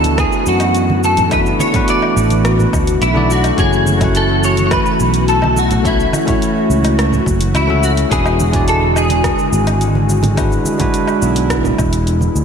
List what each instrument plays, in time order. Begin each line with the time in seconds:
Already playing: fretless electric bass D2, analog synth pad E3 B3 F#4, tine electric piano A3 D4 E4 F#4 B4 E5, clean electric guitar A4
0.04 closed hi-hat, muted conga, high conga, shaker
0.18 clean electric guitar G#4, kick, cross-stick, closed hi-hat, shaker
0.32 shaker
0.46 fretless electric bass F#2, clean electric guitar F#4, shaker
0.60 closed hi-hat, low woodblock, shaker
0.75 closed hi-hat, shaker
0.90 high conga
1.04 clean electric guitar A4, muted conga, shaker
1.17 closed hi-hat, muted conga, low conga, shaker
1.30 tine electric piano A3 D4 E4 F#4 B4, clean electric guitar B4, kick, closed hi-hat, low woodblock, shaker
1.46 shaker
1.60 clean electric guitar C#5, high conga, shaker
1.73 tine electric piano A3 D4 E4 F#4 B4, kick, closed hi-hat, muted conga, low conga, shaker
1.88 clean electric guitar D5, closed hi-hat, shaker
2.02 low woodblock
2.17 fretless electric bass A1, shaker
2.30 closed hi-hat, muted conga, high conga, shaker
2.45 cross-stick, closed hi-hat, shaker
2.60 low conga, shaker
2.73 fretless electric bass D2, kick, low woodblock, shaker
2.87 closed hi-hat, shaker
3.02 fretless electric bass B1, clean electric guitar E4, closed hi-hat, shaker
3.13 tine electric piano A3 D4 E4 F#4 D5, high conga
3.30 clean electric guitar F#4, shaker
3.44 closed hi-hat, low woodblock, shaker
3.56 fretless electric bass F#1, tine electric piano A3 C#4 E4 F#4 C#5, analog synth pad A3, clean electric guitar G#4, kick, closed hi-hat, shaker
3.73 shaker
3.87 high conga, shaker
3.97 tine electric piano A3 C#4 E4, kick, closed hi-hat, low conga, low woodblock
4.02 tine electric piano F#4 F#5, muted conga, shaker
4.15 clean electric guitar A4, closed hi-hat, shaker
4.44 clean electric guitar C#5, shaker
4.57 closed hi-hat, muted conga, high conga, shaker
4.66 clean electric guitar C#5
4.71 clean electric guitar B4, kick, cross-stick, closed hi-hat, low woodblock, shaker
4.86 shaker
5.00 fretless electric bass B1, shaker
5.14 closed hi-hat, shaker
5.28 clean electric guitar A4, closed hi-hat, shaker
5.42 high conga, low woodblock
5.56 clean electric guitar F#4, muted conga, shaker
5.71 closed hi-hat, muted conga, low conga, shaker
5.83 tine electric piano A3 C#4 E4 F#4 C#5, clean electric guitar E4, kick, closed hi-hat, shaker
6.00 shaker
6.13 high conga, low woodblock, shaker
6.25 tine electric piano A3 C#4 E4 F#4 C#5, kick, closed hi-hat, muted conga, low conga, shaker
6.42 closed hi-hat, shaker
6.70 fretless electric bass C#2, shaker
6.83 closed hi-hat, muted conga, high conga, low woodblock, shaker
6.99 cross-stick, closed hi-hat, shaker
7.13 low conga, shaker
7.26 fretless electric bass F#1, kick, shaker
7.41 closed hi-hat, shaker
7.55 fretless electric bass C#2, clean electric guitar E4, closed hi-hat, low woodblock, shaker
7.67 tine electric piano A3 C#4 E4 F#4 E5, high conga
7.83 clean electric guitar F#4, shaker
7.97 closed hi-hat, shaker
8.09 fretless electric bass E1, analog synth pad D3 G#3, tine electric piano G#3 D4 E4 F#4 B4, clean electric guitar G#4, kick, closed hi-hat, shaker
8.26 low woodblock, shaker
8.40 high conga, shaker
8.49 tine electric piano G#3 D4 E4
8.53 tine electric piano F#4 D5, kick, closed hi-hat, muted conga, low conga, shaker
8.68 clean electric guitar A4, closed hi-hat, shaker
8.96 clean electric guitar G#4, low woodblock, shaker
9.10 closed hi-hat, muted conga, high conga, shaker
9.24 kick, cross-stick, closed hi-hat, shaker
9.39 shaker
9.53 fretless electric bass G#1, shaker
9.67 closed hi-hat, low woodblock, shaker
9.81 closed hi-hat, shaker
9.95 high conga
10.09 muted conga, shaker
10.23 closed hi-hat, muted conga, low conga, shaker
10.35 tine electric piano G#3 D4 E4 F#4 B4, analog synth pad E4, kick, closed hi-hat, low woodblock, shaker
10.52 shaker
10.65 high conga, shaker
10.78 tine electric piano G#3 D4 E4 F#4 B4, kick, closed hi-hat, muted conga, low conga, shaker
10.94 closed hi-hat, shaker
11.07 low woodblock, shaker
11.22 fretless electric bass B1, shaker
11.36 closed hi-hat, muted conga, high conga, shaker
11.50 kick, cross-stick, closed hi-hat, shaker
11.65 low conga, shaker
11.78 fretless electric bass E1, kick, low woodblock, shaker
11.93 closed hi-hat, shaker
12.07 closed hi-hat, shaker
12.21 high conga, shaker
12.36 fretless electric bass D2, shaker